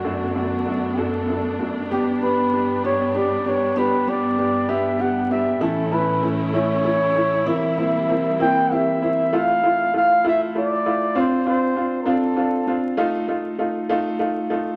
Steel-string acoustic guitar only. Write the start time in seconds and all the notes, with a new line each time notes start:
1.91 B3
2.22 B3
2.53 D4
2.84 B3
3.14 G4
3.45 D4
3.76 B3
4.08 B3
4.38 D4
4.68 B3
4.99 G4
5.31 D4
5.61 E3
5.92 A3
6.23 C#4
6.54 A3
6.84 A4
7.16 C#4
7.46 E3
7.78 A#3
8.09 C4
8.40 A#3
8.72 G4
9.04 C4